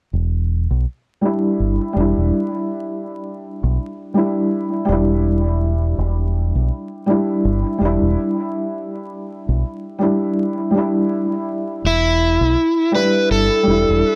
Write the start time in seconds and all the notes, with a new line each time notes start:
0.13 E1
0.71 B1
1.21 G3 D4 E4
1.60 G1
1.93 E1 G3 D4
2.00 E4
2.17 E1
3.63 B1
4.14 G3 D4 E4
4.85 G3 D4
4.89 E1 E4
5.98 E1
6.55 B1
7.06 G3 D4 E4
7.45 G1
7.78 E1 G3 D4
7.85 E4
8.01 E1
9.49 B1
9.99 G3 D4 E4
10.71 G3 D4
10.78 E4
11.84 E1 E4
12.41 B1
12.92 G3 D4 E4 B4
13.31 G1 A4
13.63 G3 D4
13.67 E1 E4
13.89 E1